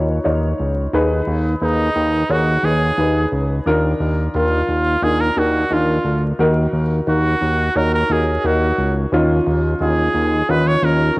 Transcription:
Already playing: D#2 D#3 D#4 F4 B4 C#5
0.24 D#2 D#4 F4 C#5
0.60 C#2
0.93 D#2 D#3 D#4 G#4 B4
1.27 D#2
1.61 D#2 D#4 G#4 B4
1.96 D#2
2.29 D#2 D#4 F#4 G#4 C#5
2.63 D#2 D#4 G#4 B4
2.98 D#2 D#4 G#4 B4
3.32 C#2
3.66 D#2 D#3 D4 F4 A#4
4.00 D#2
4.34 D#2 D4 F4 A#4
4.69 D#2
5.02 D#2 D4 F4 G#4 A#4
5.21 A#4
5.36 D#2 D4 F4 F#4 A#4
5.71 D#2 D4 F4 A#4
6.05 D2
6.39 D#2 D#3 D#4 F#4 A#4
6.73 D#2
7.07 D#2 D#4 F#4 A#4
7.42 D#2
7.76 D#2 D#4 F#4 A#4 C#5
7.94 A#4
8.10 D#2 D#4 F#4 G#4 A#4
8.44 D#2 D#4 F#4 A#4
8.78 C#2
9.12 D#2 D#3 C#4 D#4 F4
9.46 D#2
9.80 D#2 C#4 D#4 F4 G#4
10.14 D#2
10.49 D#2 C#4 D#4 F4 B4
10.67 C#5
10.83 D#2 C#4 D#4 F4 A#4
11.17 C#4

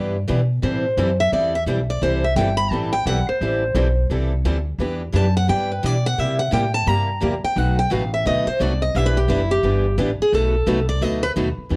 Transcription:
Already playing: G2 E3 G3 B3 D4 E4 G4 B4
0.28 B2 E3 G3 B3 D4 E4 G4 B4
0.63 A2 E3 G3 C4 E4 A4 C5
0.97 F#2 E3 G3 C4 E4 A4
1.20 E5
1.32 E2 E3 G3 C4 E4 A4 D5
1.55 E5
1.66 B1 E3 G3 C4 E4 A4
1.90 D5
2.02 C2 E3 G3 C4 E4 A4 C5
2.24 E5
2.36 G1 E3 G3 C4 E4 A4 G5
2.57 B5
2.70 A1 E3 G3 C4 E4 A4 A5
2.92 G5
3.05 B1 E3 G3 C4 E4 A4 F#5
3.27 C5, muted upright bass stroke
3.41 A1 E3 G3 C4 E4 A4
3.74 B1 E3 G3 C4 E4 A4
4.10 C2 E3 G3 C4 E4 A4
4.45 D2 E3 G3 C4 E4 A4
4.78 E2 E3 G3 B3 D4 E4 G4 B4
5.13 F#2 E3 G3 B3 D4 E4 G4 B4 A5
5.37 F#5
5.47 G2 E3 G3 B3 D4 E4 G4 B4 G5
5.71 B4
5.83 B2 E3 G3 B3 D4 E4 G4 B4 D5
6.06 F#5
6.17 C3 G3 A#3 E4 G4 E5
6.39 F#5
6.52 A2 C3 G3 A#3 E4 G4 G5
6.74 A5
6.87 G2 C3 G3 A#3 E4 G4 A#5
7.21 E2 C3 G3 A#3 E4 G4
7.43 G5, muted upright bass stroke
7.56 B1 B2 F#3 A3 D#4 F#4 B4 F#5
7.79 G5
7.91 A1 B2 F#3 A3 D#4 F#4 B4 F5
8.14 E5
8.25 D2 B2 F#3 A3 D#4 F#4 B4 D#5
8.46 C5, muted upright bass stroke
8.60 C2 B2 F#3 A3 D#4 F#4 B4 D5
8.82 D#5
8.95 B1 E3 G3 B3 D4 E4 G4 B4 E5
9.06 B4
9.17 G4
9.28 F#1 E3 G3 B3 D4 E4 G4 B4
9.51 G4
9.63 G1 E3 G3 B3 D4 E4 G4 B4
9.98 A1 E3 G3 B3 D4 E4 G4 B4
10.20 G#4, muted upright bass stroke
10.32 B1 B2 F#3 A3 D#4 F#4 A4 B4
10.66 C2 B2 F#3 A3 D#4 F#4 B4
10.89 D5
11.01 D2 B2 F#3 A3 D#4 F#4 B4 D#5
11.23 B4
11.36 D#2 B2 F#3 A3 D#4 F#4 B4
11.58 muted upright bass stroke
11.69 E2 E3 G3 B3 D4 E4 G4 B4

